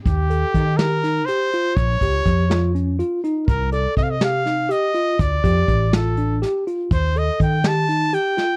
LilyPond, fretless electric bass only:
\new Staff \with { instrumentName = "Fretless electric bass" } { \clef bass \time 7/8 \key ees \lydian \tempo 4 = 122 ees,4 ees2 r8 | bes,,8 des,8 f,2 r8 | c,4 c2 r8 | d,8 f,8 a,,2 r8 |
ees,4 ees2 r8 | }